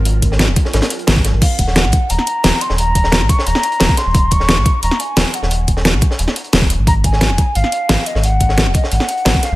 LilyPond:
<<
  \new Staff \with { instrumentName = "Flute" } { \time 4/4 \key ees \dorian \tempo 4 = 176 r1 | f''8 ges''4. bes''4. c'''8 | bes''4. des'''8 bes''4. c'''8~ | c'''8 des'''4. bes''8 aes''4 ges''8~ |
ges''8 r2. r8 | bes''8 aes''4. f''4. ees''8 | ges''4. ees''8 ges''4. f''8 | }
  \new Staff \with { instrumentName = "Analog synth pad" } { \time 4/4 \key ees \dorian <ges c' f' bes'>1 | r1 | r1 | r1 |
r1 | r1 | r1 | }
  \new Staff \with { instrumentName = "Sub bass" } { \clef bass \time 4/4 \key ees \dorian aes,,8 aes,,8. ees,,16 r8 aes,,16 r8. aes,,8. aes,,16 | r8 ees,,8. bes,,16 r8 ees,,16 r8. ees,,16 r8 ees,,16~ | ees,,8 ees,,8. bes,,16 r8 ees,,16 r8. ees,,16 r8 ees,,16~ | ees,,8 ees,,8. bes,,16 r8 ees,,16 r8. ees,,16 r8 ees,,16~ |
ees,,8 ees,,8. bes,,16 r8 ees,,16 r8. ees,,8. aes,,16~ | aes,,8 aes,,8. ees,,16 r8 aes,,16 r8. aes,,16 r8 aes,,16~ | aes,,8 aes,,8. ees,,16 r8 aes,,16 r8. aes,,16 r8 aes,,16 | }
  \new DrumStaff \with { instrumentName = "Drums" } \drummode { \time 4/4 hh8 <hh bd>16 sn16 <hh sn>16 sn16 <hh bd>16 sn16 <hh sn>16 <hh sn>16 hh16 hh16 <hh sn>16 <hh bd>16 <hh sn>8 | <cymc hh bd>8 <hh bd>16 sn16 <hh sn>16 sn16 <hh bd>8 hh16 sn16 hh8 <hh sn>8 hh16 sn16 | hh8 <hh bd>16 sn16 <hh sn>16 sn16 <hh bd>16 sn16 hh16 sn16 hh16 hh16 <hh sn>16 <hh bd>16 <hh sn>8 | <hh bd>8 <hh bd>16 sn16 <hh sn>16 sn16 <hh bd>8 hh16 sn16 hh8 <hh sn>8 hh16 sn16 |
hh8 <hh bd>16 sn16 <hh sn>16 sn16 <hh bd>16 sn16 hh16 sn16 hh16 hh16 <hh sn>16 <hh bd>16 hh8 | <hh bd>8 <hh bd>16 sn16 <hh sn>16 sn16 <hh bd>8 hh16 sn16 hh8 <hh sn>8 hh16 sn16 | hh8 <hh bd>16 sn16 <hh sn>16 sn16 <hh bd>16 sn16 hh16 sn16 hh16 hh16 <hh sn>16 bd16 <hh sn>8 | }
>>